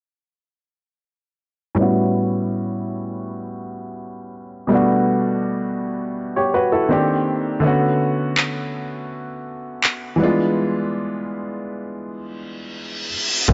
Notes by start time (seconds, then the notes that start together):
1.75 A2 G3 B3
1.79 C#4 E4 F#4
4.67 B2 G3 A3
4.72 B3 D4 F#4
6.36 G4 C#5
6.54 F#4 B4
6.72 E4 A4
6.89 D#3 A#3 C4 D4 G4
7.60 D3 A3 B3
7.65 C#4 F#4
8.37 clap
9.84 clap
10.16 E3 G3 B3
10.22 G#3 D4 F4
12.02 reverse cymbal
13.48 B1 D3 A3 B3, kick, closed hi-hat, crash, downlifter